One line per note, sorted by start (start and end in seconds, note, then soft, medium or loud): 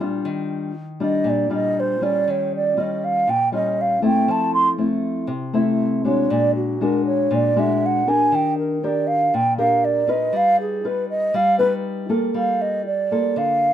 0.00 0.22 A#2 medium
0.00 0.71 G3 medium
0.00 0.71 D4 medium
0.00 0.71 F4 medium
0.25 1.23 D#3 medium
1.00 1.46 G3 medium
1.00 1.46 D4 medium
1.00 1.47 F4 medium
1.00 1.31 D#5 medium
1.24 2.23 A#2 medium
1.29 1.52 D5 medium
1.50 1.96 G3 medium
1.50 1.97 D4 medium
1.50 1.97 F4 medium
1.54 1.81 D#5 medium
1.80 2.05 C5 medium
2.01 2.73 G3 medium
2.01 2.73 C#4 medium
2.01 2.73 F4 medium
2.01 2.32 D5 medium
2.27 3.25 D#3 medium
2.27 2.53 C#5 medium
2.56 2.82 D5 medium
2.77 3.27 G3 medium
2.77 3.27 C#4 medium
2.77 3.27 F4 medium
2.77 3.06 D#5 medium
3.04 3.31 F5 medium
3.27 4.25 A#2 medium
3.27 3.53 G5 loud
3.52 3.98 G3 medium
3.52 3.99 C#4 medium
3.52 3.99 F4 medium
3.52 3.83 D#5 medium
3.81 4.04 F5 medium
4.02 4.77 A3 medium
4.02 4.77 C4 medium
4.02 4.78 E4 medium
4.02 4.32 G5 medium
4.28 5.26 F3 medium
4.28 4.53 A5 medium
4.54 4.69 C6 loud
4.78 5.28 A3 medium
4.78 5.29 C4 medium
4.78 5.29 E4 medium
5.27 6.26 C3 medium
5.53 6.00 A3 medium
5.53 6.00 C4 medium
5.53 6.01 E4 medium
6.04 6.76 G#3 medium
6.04 6.76 D4 medium
6.04 6.76 F#4 medium
6.04 6.32 C#5 medium
6.30 7.28 A#2 medium
6.30 6.55 D5 medium
6.56 6.85 F#4 medium
6.81 7.52 G#3 medium
6.81 7.52 D4 medium
6.81 7.52 F#4 medium
6.81 7.05 A#4 medium
7.06 7.36 C#5 medium
7.31 8.29 A#2 medium
7.35 7.61 D5 medium
7.56 8.02 G#3 medium
7.56 8.03 D4 medium
7.56 8.03 F#4 medium
7.56 7.88 E5 medium
7.86 8.10 F#5 medium
8.07 8.78 D4 medium
8.07 8.78 G4 medium
8.07 8.78 A#4 medium
8.07 8.36 G#5 loud
8.32 9.30 D#3 medium
8.32 8.58 G5 medium
8.58 8.86 A#4 medium
8.83 9.33 D4 medium
8.83 9.33 G4 medium
8.83 9.33 A#4 medium
8.83 9.09 D5 medium
9.07 9.36 F5 medium
9.34 10.31 A#2 medium
9.34 9.58 G5 loud
9.58 10.04 D4 medium
9.58 10.04 G4 medium
9.58 10.04 A#4 medium
9.58 9.86 F5 medium
9.85 10.12 D5 medium
10.08 10.79 D#4 medium
10.08 10.80 F4 medium
10.08 10.80 B4 medium
10.08 10.38 D#5 medium
10.33 11.31 G3 medium
10.33 10.60 F5 loud
10.61 10.89 G#4 medium
10.84 11.34 D#4 medium
10.84 11.34 F4 medium
10.84 11.35 B4 medium
10.84 11.09 B4 medium
11.09 11.37 D#5 medium
11.34 12.33 G3 medium
11.34 11.58 F5 loud
11.59 12.06 D#4 medium
11.59 12.06 F4 medium
11.59 11.74 B4 medium
11.59 12.06 B4 medium
12.09 12.81 A#3 medium
12.09 12.82 F4 medium
12.09 12.82 A4 medium
12.34 13.33 G3 medium
12.34 12.63 F5 medium
12.61 12.86 D#5 medium
12.86 13.39 D5 medium
13.11 13.73 A#3 medium
13.11 13.73 F4 medium
13.11 13.73 A4 medium
13.36 13.73 D3 medium
13.36 13.73 F5 loud